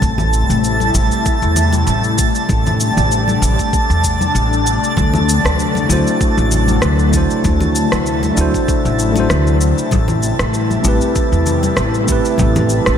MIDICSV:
0, 0, Header, 1, 6, 480
1, 0, Start_track
1, 0, Tempo, 618557
1, 17, Time_signature, 4, 2, 24, 8
1, 10072, End_track
2, 0, Start_track
2, 0, Title_t, "Synth texture"
2, 0, Program_c, 0, 99
2, 0, Note_on_c, 0, 81, 79
2, 10072, Note_off_c, 0, 81, 0
2, 10072, End_track
3, 0, Start_track
3, 0, Title_t, "Tine electric piano"
3, 0, Program_c, 1, 4
3, 4542, Note_on_c, 1, 57, 66
3, 4556, Note_on_c, 1, 62, 64
3, 4571, Note_on_c, 1, 64, 63
3, 4587, Note_on_c, 1, 66, 63
3, 4601, Note_on_c, 1, 72, 76
3, 5494, Note_off_c, 1, 57, 0
3, 5501, Note_off_c, 1, 62, 0
3, 5506, Note_on_c, 1, 57, 71
3, 5508, Note_off_c, 1, 64, 0
3, 5516, Note_off_c, 1, 66, 0
3, 5520, Note_on_c, 1, 62, 65
3, 5523, Note_off_c, 1, 72, 0
3, 5535, Note_on_c, 1, 64, 63
3, 5550, Note_on_c, 1, 66, 64
3, 5566, Note_on_c, 1, 72, 81
3, 6456, Note_off_c, 1, 57, 0
3, 6462, Note_off_c, 1, 62, 0
3, 6464, Note_on_c, 1, 57, 78
3, 6470, Note_off_c, 1, 64, 0
3, 6478, Note_off_c, 1, 66, 0
3, 6479, Note_on_c, 1, 62, 77
3, 6485, Note_off_c, 1, 72, 0
3, 6496, Note_on_c, 1, 64, 76
3, 6510, Note_on_c, 1, 66, 74
3, 6525, Note_on_c, 1, 72, 94
3, 7060, Note_off_c, 1, 57, 0
3, 7068, Note_off_c, 1, 62, 0
3, 7076, Note_off_c, 1, 64, 0
3, 7078, Note_on_c, 1, 57, 78
3, 7083, Note_off_c, 1, 66, 0
3, 7091, Note_off_c, 1, 72, 0
3, 7092, Note_on_c, 1, 62, 76
3, 7107, Note_on_c, 1, 64, 72
3, 7122, Note_on_c, 1, 66, 74
3, 7138, Note_on_c, 1, 72, 91
3, 7669, Note_off_c, 1, 57, 0
3, 7676, Note_off_c, 1, 62, 0
3, 7683, Note_off_c, 1, 64, 0
3, 7691, Note_off_c, 1, 66, 0
3, 7699, Note_off_c, 1, 72, 0
3, 8383, Note_on_c, 1, 57, 71
3, 8398, Note_on_c, 1, 60, 65
3, 8413, Note_on_c, 1, 64, 65
3, 8430, Note_on_c, 1, 67, 67
3, 8444, Note_on_c, 1, 71, 81
3, 9334, Note_off_c, 1, 57, 0
3, 9341, Note_off_c, 1, 60, 0
3, 9345, Note_on_c, 1, 57, 73
3, 9349, Note_off_c, 1, 64, 0
3, 9357, Note_off_c, 1, 67, 0
3, 9359, Note_on_c, 1, 60, 67
3, 9365, Note_off_c, 1, 71, 0
3, 9376, Note_on_c, 1, 64, 72
3, 9389, Note_on_c, 1, 67, 71
3, 9405, Note_on_c, 1, 71, 88
3, 10072, Note_off_c, 1, 57, 0
3, 10072, Note_off_c, 1, 60, 0
3, 10072, Note_off_c, 1, 64, 0
3, 10072, Note_off_c, 1, 67, 0
3, 10072, Note_off_c, 1, 71, 0
3, 10072, End_track
4, 0, Start_track
4, 0, Title_t, "Analog synth pad"
4, 0, Program_c, 2, 89
4, 0, Note_on_c, 2, 48, 74
4, 0, Note_on_c, 2, 57, 64
4, 12, Note_on_c, 2, 64, 79
4, 14, Note_on_c, 2, 55, 70
4, 1916, Note_off_c, 2, 64, 0
4, 1936, Note_on_c, 2, 62, 78
4, 3825, Note_off_c, 2, 55, 0
4, 3829, Note_off_c, 2, 48, 0
4, 3829, Note_off_c, 2, 57, 0
4, 3855, Note_on_c, 2, 48, 73
4, 3857, Note_on_c, 2, 54, 63
4, 3858, Note_on_c, 2, 57, 69
4, 5745, Note_off_c, 2, 62, 0
4, 5775, Note_on_c, 2, 64, 84
4, 7666, Note_off_c, 2, 54, 0
4, 7693, Note_on_c, 2, 55, 70
4, 9587, Note_off_c, 2, 57, 0
4, 9613, Note_on_c, 2, 71, 72
4, 10072, Note_off_c, 2, 48, 0
4, 10072, Note_off_c, 2, 55, 0
4, 10072, Note_off_c, 2, 64, 0
4, 10072, Note_off_c, 2, 71, 0
4, 10072, End_track
5, 0, Start_track
5, 0, Title_t, "Upright bass"
5, 0, Program_c, 3, 32
5, 16, Note_on_c, 3, 33, 90
5, 339, Note_off_c, 3, 33, 0
5, 386, Note_on_c, 3, 33, 81
5, 695, Note_off_c, 3, 33, 0
5, 734, Note_on_c, 3, 33, 89
5, 836, Note_off_c, 3, 33, 0
5, 1104, Note_on_c, 3, 40, 86
5, 1414, Note_off_c, 3, 40, 0
5, 1449, Note_on_c, 3, 33, 87
5, 1775, Note_off_c, 3, 33, 0
5, 1935, Note_on_c, 3, 33, 93
5, 2258, Note_off_c, 3, 33, 0
5, 2304, Note_on_c, 3, 33, 83
5, 2614, Note_off_c, 3, 33, 0
5, 2653, Note_on_c, 3, 33, 86
5, 2755, Note_off_c, 3, 33, 0
5, 3025, Note_on_c, 3, 40, 88
5, 3335, Note_off_c, 3, 40, 0
5, 3374, Note_on_c, 3, 33, 86
5, 3697, Note_off_c, 3, 33, 0
5, 3858, Note_on_c, 3, 38, 90
5, 4179, Note_off_c, 3, 38, 0
5, 4226, Note_on_c, 3, 38, 82
5, 4535, Note_off_c, 3, 38, 0
5, 4572, Note_on_c, 3, 38, 85
5, 4675, Note_off_c, 3, 38, 0
5, 4947, Note_on_c, 3, 33, 84
5, 5256, Note_off_c, 3, 33, 0
5, 5294, Note_on_c, 3, 38, 90
5, 5617, Note_off_c, 3, 38, 0
5, 5780, Note_on_c, 3, 38, 90
5, 6100, Note_off_c, 3, 38, 0
5, 6148, Note_on_c, 3, 38, 83
5, 6456, Note_off_c, 3, 38, 0
5, 6496, Note_on_c, 3, 38, 90
5, 6597, Note_off_c, 3, 38, 0
5, 6870, Note_on_c, 3, 33, 88
5, 7177, Note_off_c, 3, 33, 0
5, 7215, Note_on_c, 3, 38, 94
5, 7538, Note_off_c, 3, 38, 0
5, 7698, Note_on_c, 3, 33, 99
5, 8019, Note_off_c, 3, 33, 0
5, 8066, Note_on_c, 3, 33, 87
5, 8375, Note_off_c, 3, 33, 0
5, 8416, Note_on_c, 3, 33, 88
5, 8517, Note_off_c, 3, 33, 0
5, 8785, Note_on_c, 3, 40, 86
5, 9095, Note_off_c, 3, 40, 0
5, 9134, Note_on_c, 3, 33, 92
5, 9457, Note_off_c, 3, 33, 0
5, 9617, Note_on_c, 3, 33, 100
5, 9939, Note_off_c, 3, 33, 0
5, 9985, Note_on_c, 3, 33, 85
5, 10072, Note_off_c, 3, 33, 0
5, 10072, End_track
6, 0, Start_track
6, 0, Title_t, "Drums"
6, 16, Note_on_c, 9, 63, 84
6, 17, Note_on_c, 9, 36, 115
6, 19, Note_on_c, 9, 69, 42
6, 93, Note_off_c, 9, 63, 0
6, 94, Note_off_c, 9, 36, 0
6, 97, Note_off_c, 9, 69, 0
6, 140, Note_on_c, 9, 64, 85
6, 150, Note_on_c, 9, 69, 21
6, 218, Note_off_c, 9, 64, 0
6, 228, Note_off_c, 9, 69, 0
6, 258, Note_on_c, 9, 69, 72
6, 336, Note_off_c, 9, 69, 0
6, 389, Note_on_c, 9, 69, 31
6, 467, Note_off_c, 9, 69, 0
6, 498, Note_on_c, 9, 69, 43
6, 576, Note_off_c, 9, 69, 0
6, 623, Note_on_c, 9, 63, 63
6, 628, Note_on_c, 9, 69, 20
6, 701, Note_off_c, 9, 63, 0
6, 705, Note_off_c, 9, 69, 0
6, 735, Note_on_c, 9, 69, 77
6, 812, Note_off_c, 9, 69, 0
6, 866, Note_on_c, 9, 69, 33
6, 943, Note_off_c, 9, 69, 0
6, 975, Note_on_c, 9, 69, 43
6, 977, Note_on_c, 9, 36, 103
6, 1052, Note_off_c, 9, 69, 0
6, 1054, Note_off_c, 9, 36, 0
6, 1102, Note_on_c, 9, 69, 20
6, 1180, Note_off_c, 9, 69, 0
6, 1212, Note_on_c, 9, 64, 76
6, 1213, Note_on_c, 9, 69, 74
6, 1289, Note_off_c, 9, 64, 0
6, 1291, Note_off_c, 9, 69, 0
6, 1339, Note_on_c, 9, 63, 80
6, 1343, Note_on_c, 9, 69, 34
6, 1417, Note_off_c, 9, 63, 0
6, 1421, Note_off_c, 9, 69, 0
6, 1452, Note_on_c, 9, 69, 42
6, 1530, Note_off_c, 9, 69, 0
6, 1581, Note_on_c, 9, 69, 20
6, 1659, Note_off_c, 9, 69, 0
6, 1693, Note_on_c, 9, 69, 81
6, 1696, Note_on_c, 9, 36, 102
6, 1771, Note_off_c, 9, 69, 0
6, 1774, Note_off_c, 9, 36, 0
6, 1824, Note_on_c, 9, 69, 34
6, 1901, Note_off_c, 9, 69, 0
6, 1931, Note_on_c, 9, 63, 72
6, 1936, Note_on_c, 9, 36, 101
6, 1936, Note_on_c, 9, 69, 42
6, 2009, Note_off_c, 9, 63, 0
6, 2013, Note_off_c, 9, 36, 0
6, 2014, Note_off_c, 9, 69, 0
6, 2066, Note_on_c, 9, 69, 22
6, 2070, Note_on_c, 9, 64, 79
6, 2144, Note_off_c, 9, 69, 0
6, 2148, Note_off_c, 9, 64, 0
6, 2176, Note_on_c, 9, 69, 72
6, 2253, Note_off_c, 9, 69, 0
6, 2308, Note_on_c, 9, 64, 81
6, 2309, Note_on_c, 9, 69, 29
6, 2386, Note_off_c, 9, 64, 0
6, 2386, Note_off_c, 9, 69, 0
6, 2418, Note_on_c, 9, 69, 42
6, 2495, Note_off_c, 9, 69, 0
6, 2543, Note_on_c, 9, 63, 68
6, 2551, Note_on_c, 9, 69, 20
6, 2621, Note_off_c, 9, 63, 0
6, 2628, Note_off_c, 9, 69, 0
6, 2659, Note_on_c, 9, 69, 80
6, 2737, Note_off_c, 9, 69, 0
6, 2787, Note_on_c, 9, 36, 51
6, 2787, Note_on_c, 9, 69, 33
6, 2865, Note_off_c, 9, 36, 0
6, 2865, Note_off_c, 9, 69, 0
6, 2896, Note_on_c, 9, 36, 104
6, 2899, Note_on_c, 9, 69, 46
6, 2973, Note_off_c, 9, 36, 0
6, 2976, Note_off_c, 9, 69, 0
6, 3030, Note_on_c, 9, 69, 21
6, 3108, Note_off_c, 9, 69, 0
6, 3136, Note_on_c, 9, 36, 52
6, 3136, Note_on_c, 9, 69, 77
6, 3213, Note_off_c, 9, 69, 0
6, 3214, Note_off_c, 9, 36, 0
6, 3267, Note_on_c, 9, 63, 81
6, 3270, Note_on_c, 9, 69, 32
6, 3344, Note_off_c, 9, 63, 0
6, 3348, Note_off_c, 9, 69, 0
6, 3380, Note_on_c, 9, 69, 43
6, 3458, Note_off_c, 9, 69, 0
6, 3515, Note_on_c, 9, 69, 21
6, 3593, Note_off_c, 9, 69, 0
6, 3621, Note_on_c, 9, 69, 71
6, 3699, Note_off_c, 9, 69, 0
6, 3755, Note_on_c, 9, 69, 33
6, 3833, Note_off_c, 9, 69, 0
6, 3855, Note_on_c, 9, 63, 82
6, 3857, Note_on_c, 9, 36, 112
6, 3863, Note_on_c, 9, 69, 43
6, 3932, Note_off_c, 9, 63, 0
6, 3935, Note_off_c, 9, 36, 0
6, 3940, Note_off_c, 9, 69, 0
6, 3985, Note_on_c, 9, 64, 86
6, 3996, Note_on_c, 9, 69, 20
6, 4063, Note_off_c, 9, 64, 0
6, 4074, Note_off_c, 9, 69, 0
6, 4106, Note_on_c, 9, 69, 76
6, 4183, Note_off_c, 9, 69, 0
6, 4233, Note_on_c, 9, 37, 66
6, 4236, Note_on_c, 9, 69, 31
6, 4311, Note_off_c, 9, 37, 0
6, 4314, Note_off_c, 9, 69, 0
6, 4342, Note_on_c, 9, 69, 42
6, 4420, Note_off_c, 9, 69, 0
6, 4463, Note_on_c, 9, 63, 66
6, 4474, Note_on_c, 9, 69, 20
6, 4540, Note_off_c, 9, 63, 0
6, 4552, Note_off_c, 9, 69, 0
6, 4579, Note_on_c, 9, 69, 77
6, 4656, Note_off_c, 9, 69, 0
6, 4712, Note_on_c, 9, 69, 30
6, 4789, Note_off_c, 9, 69, 0
6, 4817, Note_on_c, 9, 36, 105
6, 4818, Note_on_c, 9, 69, 42
6, 4895, Note_off_c, 9, 36, 0
6, 4896, Note_off_c, 9, 69, 0
6, 4948, Note_on_c, 9, 69, 20
6, 5026, Note_off_c, 9, 69, 0
6, 5055, Note_on_c, 9, 69, 69
6, 5058, Note_on_c, 9, 64, 66
6, 5133, Note_off_c, 9, 69, 0
6, 5136, Note_off_c, 9, 64, 0
6, 5184, Note_on_c, 9, 63, 74
6, 5186, Note_on_c, 9, 69, 30
6, 5262, Note_off_c, 9, 63, 0
6, 5264, Note_off_c, 9, 69, 0
6, 5291, Note_on_c, 9, 37, 71
6, 5294, Note_on_c, 9, 69, 44
6, 5369, Note_off_c, 9, 37, 0
6, 5371, Note_off_c, 9, 69, 0
6, 5425, Note_on_c, 9, 69, 20
6, 5502, Note_off_c, 9, 69, 0
6, 5535, Note_on_c, 9, 69, 72
6, 5538, Note_on_c, 9, 36, 95
6, 5612, Note_off_c, 9, 69, 0
6, 5616, Note_off_c, 9, 36, 0
6, 5668, Note_on_c, 9, 69, 31
6, 5746, Note_off_c, 9, 69, 0
6, 5775, Note_on_c, 9, 63, 68
6, 5777, Note_on_c, 9, 69, 40
6, 5780, Note_on_c, 9, 36, 105
6, 5853, Note_off_c, 9, 63, 0
6, 5855, Note_off_c, 9, 69, 0
6, 5857, Note_off_c, 9, 36, 0
6, 5901, Note_on_c, 9, 64, 78
6, 5908, Note_on_c, 9, 69, 20
6, 5979, Note_off_c, 9, 64, 0
6, 5986, Note_off_c, 9, 69, 0
6, 6018, Note_on_c, 9, 69, 71
6, 6095, Note_off_c, 9, 69, 0
6, 6146, Note_on_c, 9, 37, 69
6, 6148, Note_on_c, 9, 69, 29
6, 6223, Note_off_c, 9, 37, 0
6, 6226, Note_off_c, 9, 69, 0
6, 6257, Note_on_c, 9, 69, 39
6, 6334, Note_off_c, 9, 69, 0
6, 6386, Note_on_c, 9, 63, 61
6, 6390, Note_on_c, 9, 69, 20
6, 6463, Note_off_c, 9, 63, 0
6, 6468, Note_off_c, 9, 69, 0
6, 6496, Note_on_c, 9, 69, 72
6, 6574, Note_off_c, 9, 69, 0
6, 6630, Note_on_c, 9, 36, 53
6, 6633, Note_on_c, 9, 69, 29
6, 6708, Note_off_c, 9, 36, 0
6, 6710, Note_off_c, 9, 69, 0
6, 6739, Note_on_c, 9, 36, 101
6, 6740, Note_on_c, 9, 69, 41
6, 6816, Note_off_c, 9, 36, 0
6, 6817, Note_off_c, 9, 69, 0
6, 6871, Note_on_c, 9, 69, 19
6, 6949, Note_off_c, 9, 69, 0
6, 6978, Note_on_c, 9, 69, 72
6, 7055, Note_off_c, 9, 69, 0
6, 7105, Note_on_c, 9, 63, 83
6, 7110, Note_on_c, 9, 69, 32
6, 7183, Note_off_c, 9, 63, 0
6, 7187, Note_off_c, 9, 69, 0
6, 7216, Note_on_c, 9, 37, 74
6, 7219, Note_on_c, 9, 69, 42
6, 7294, Note_off_c, 9, 37, 0
6, 7297, Note_off_c, 9, 69, 0
6, 7348, Note_on_c, 9, 69, 19
6, 7426, Note_off_c, 9, 69, 0
6, 7457, Note_on_c, 9, 69, 71
6, 7534, Note_off_c, 9, 69, 0
6, 7590, Note_on_c, 9, 69, 33
6, 7668, Note_off_c, 9, 69, 0
6, 7692, Note_on_c, 9, 63, 85
6, 7697, Note_on_c, 9, 69, 37
6, 7699, Note_on_c, 9, 36, 96
6, 7770, Note_off_c, 9, 63, 0
6, 7774, Note_off_c, 9, 69, 0
6, 7776, Note_off_c, 9, 36, 0
6, 7822, Note_on_c, 9, 64, 80
6, 7829, Note_on_c, 9, 69, 21
6, 7899, Note_off_c, 9, 64, 0
6, 7906, Note_off_c, 9, 69, 0
6, 7937, Note_on_c, 9, 69, 69
6, 8014, Note_off_c, 9, 69, 0
6, 8066, Note_on_c, 9, 37, 68
6, 8069, Note_on_c, 9, 69, 29
6, 8143, Note_off_c, 9, 37, 0
6, 8146, Note_off_c, 9, 69, 0
6, 8178, Note_on_c, 9, 69, 40
6, 8255, Note_off_c, 9, 69, 0
6, 8306, Note_on_c, 9, 63, 59
6, 8310, Note_on_c, 9, 69, 20
6, 8384, Note_off_c, 9, 63, 0
6, 8388, Note_off_c, 9, 69, 0
6, 8414, Note_on_c, 9, 69, 75
6, 8492, Note_off_c, 9, 69, 0
6, 8545, Note_on_c, 9, 69, 31
6, 8623, Note_off_c, 9, 69, 0
6, 8657, Note_on_c, 9, 69, 41
6, 8658, Note_on_c, 9, 36, 100
6, 8735, Note_off_c, 9, 69, 0
6, 8736, Note_off_c, 9, 36, 0
6, 8790, Note_on_c, 9, 69, 20
6, 8867, Note_off_c, 9, 69, 0
6, 8895, Note_on_c, 9, 69, 68
6, 8897, Note_on_c, 9, 64, 72
6, 8972, Note_off_c, 9, 69, 0
6, 8975, Note_off_c, 9, 64, 0
6, 9025, Note_on_c, 9, 63, 81
6, 9028, Note_on_c, 9, 69, 30
6, 9102, Note_off_c, 9, 63, 0
6, 9105, Note_off_c, 9, 69, 0
6, 9131, Note_on_c, 9, 37, 75
6, 9134, Note_on_c, 9, 69, 40
6, 9208, Note_off_c, 9, 37, 0
6, 9211, Note_off_c, 9, 69, 0
6, 9267, Note_on_c, 9, 69, 19
6, 9345, Note_off_c, 9, 69, 0
6, 9374, Note_on_c, 9, 69, 75
6, 9377, Note_on_c, 9, 36, 102
6, 9452, Note_off_c, 9, 69, 0
6, 9455, Note_off_c, 9, 36, 0
6, 9507, Note_on_c, 9, 69, 30
6, 9585, Note_off_c, 9, 69, 0
6, 9606, Note_on_c, 9, 63, 77
6, 9614, Note_on_c, 9, 69, 41
6, 9617, Note_on_c, 9, 36, 107
6, 9684, Note_off_c, 9, 63, 0
6, 9692, Note_off_c, 9, 69, 0
6, 9695, Note_off_c, 9, 36, 0
6, 9745, Note_on_c, 9, 69, 22
6, 9746, Note_on_c, 9, 64, 93
6, 9823, Note_off_c, 9, 69, 0
6, 9824, Note_off_c, 9, 64, 0
6, 9851, Note_on_c, 9, 69, 71
6, 9929, Note_off_c, 9, 69, 0
6, 9981, Note_on_c, 9, 37, 76
6, 9984, Note_on_c, 9, 69, 28
6, 10059, Note_off_c, 9, 37, 0
6, 10062, Note_off_c, 9, 69, 0
6, 10072, End_track
0, 0, End_of_file